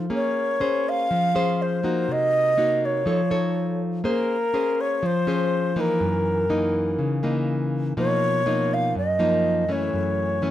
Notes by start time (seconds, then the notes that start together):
0.10 A#3 C#4 G#4
0.15 C#5
0.60 C#4 G#4 C5
0.89 F5
1.11 F3
1.35 C#4 G#4 C5
1.62 C5
1.84 A#3 D#4 F#4
2.08 C3 D#5
2.57 A#3 D#4 F#4
2.85 C#5
3.06 F3 D#4 A4 C#5
3.30 D#4 A4 C#5
4.04 A#3 C#4 G#4 C5
4.08 A#4
4.54 C#4 G#4 C5
4.81 C#5
5.03 F3 C5
5.27 C#4 G#4 C5
5.76 E3 A#3 D#4
5.80 A#4
6.00 F#2
6.49 E3 A#3 D#4
6.99 C#3
7.23 E3 A#3 D#4
7.97 B2 F3 A#3 D#4 C#5
8.46 F3 A#3 D#4
8.74 F5
8.95 F#2 D#5
9.19 F3 A#3 D#4
9.68 E3 A3 C#4 C#5
9.93 F#2
10.42 E3 A3 C#4